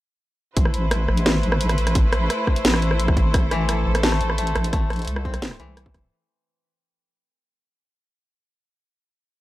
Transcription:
0.56 1.07 A1 loud
0.56 6.08 A3 medium
0.56 6.08 E4 medium
0.56 3.31 B4 medium
0.56 6.08 C5 medium
0.56 kick loud
0.56 closed hi-hat medium
0.65 cross-stick medium
0.74 closed hi-hat soft
0.91 cross-stick medium
0.91 closed hi-hat medium
1.08 1.42 A1 medium
1.08 cross-stick medium
1.17 open hi-hat medium
1.26 cross-stick medium
1.26 snare loud
1.26 closed hi-hat medium
1.43 1.77 A1 loud
1.43 open hi-hat soft
1.52 cross-stick medium
1.61 closed hi-hat medium
1.69 cross-stick medium
1.69 open hi-hat medium
1.78 2.29 A1 medium
1.78 closed hi-hat soft
1.87 cross-stick medium
1.87 open hi-hat medium
1.95 kick loud
1.95 closed hi-hat medium
2.13 cross-stick medium
2.13 closed hi-hat soft
2.30 cross-stick medium
2.30 closed hi-hat medium
2.47 kick medium
2.47 cross-stick medium
2.56 open hi-hat medium
2.65 3.33 A1 loud
2.65 snare loud
2.65 closed hi-hat medium
2.74 cross-stick medium
2.82 open hi-hat soft
2.91 cross-stick medium
3.00 closed hi-hat medium
3.08 kick loud
3.08 cross-stick medium
3.17 kick medium
3.17 closed hi-hat soft
3.34 3.85 A1 loud
3.34 6.09 A4 medium
3.34 kick loud
3.34 cross-stick medium
3.34 closed hi-hat medium
3.51 5.58 E3 loud
3.51 cross-stick medium
3.51 closed hi-hat soft
3.69 cross-stick medium
3.69 closed hi-hat medium
3.86 4.20 A1 loud
3.95 cross-stick medium
3.95 open hi-hat medium
4.03 4.38 A3 loud
4.03 snare loud
4.03 closed hi-hat medium
4.12 cross-stick medium
4.21 4.54 A1 loud
4.21 open hi-hat soft
4.30 cross-stick medium
4.38 4.72 A3 medium
4.38 closed hi-hat medium
4.47 open hi-hat medium
4.55 5.06 A1 medium
4.55 cross-stick medium
4.55 closed hi-hat soft
4.64 open hi-hat medium
4.73 7.61 A3 medium
4.73 kick loud
4.73 cross-stick medium
4.73 closed hi-hat medium
4.90 cross-stick medium
4.90 closed hi-hat soft
4.93 closed hi-hat soft
4.96 closed hi-hat soft
4.99 closed hi-hat soft
5.02 closed hi-hat soft
5.05 5.58 C2 loud
5.05 closed hi-hat soft
5.07 closed hi-hat medium
5.16 cross-stick medium
5.25 7.85 C4 medium
5.25 kick medium
5.34 cross-stick medium
5.34 open hi-hat medium
5.42 snare loud
5.42 closed hi-hat medium
5.51 cross-stick medium
5.60 6.10 C2 loud
5.60 6.17 E3 loud
5.60 open hi-hat soft
5.77 cross-stick medium
5.77 closed hi-hat medium
5.86 kick loud
5.94 kick medium
5.94 cross-stick soft
5.94 closed hi-hat soft

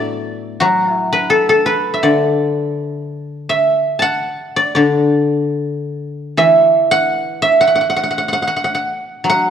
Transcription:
0.00 1.31 A2 medium
0.00 0.61 F#3 soft
0.00 2.40 A3 soft
0.00 2.17 B3 soft
0.00 1.89 D4 medium
0.00 0.92 E4 medium
0.00 0.60 F#4 medium
0.00 1.29 A4 medium
0.00 0.94 B4 medium
0.00 1.75 D5 medium
0.00 1.28 E5 medium
0.60 2.74 F#3 medium
0.60 0.92 F#4 medium
0.92 3.03 E4 medium
1.13 1.65 B4 medium
1.30 1.49 A4 medium
1.49 3.68 A4 medium
1.66 3.70 B4 medium
1.93 3.49 E5 medium
2.03 4.24 D3 soft
2.03 3.88 D5 medium
3.49 5.21 E5 medium
3.99 5.62 F#5 loud
3.99 5.44 A5 medium
4.56 4.75 D5 medium
4.75 6.89 D3 medium
4.75 6.60 D5 medium
6.37 8.52 E3 medium
6.37 7.42 E5 medium
6.91 7.60 F#5 loud
7.42 9.14 E5 medium
7.61 7.67 F#5 medium
7.67 7.75 F#5 medium
7.75 7.80 F#5 medium
7.81 7.89 F#5 soft
7.90 7.96 F#5 medium
7.96 8.03 F#5 medium
8.03 8.10 F#5 medium
8.11 8.18 F#5 medium
8.18 8.28 F#5 medium
8.28 8.32 F#5 medium
8.33 8.42 F#5 medium
8.42 8.47 F#5 medium
8.47 8.56 F#5 medium
8.56 8.64 F#5 medium
8.64 8.74 F#5 medium
8.74 9.29 F#5 medium
9.24 9.50 F#3 medium
9.30 9.50 F#5 medium

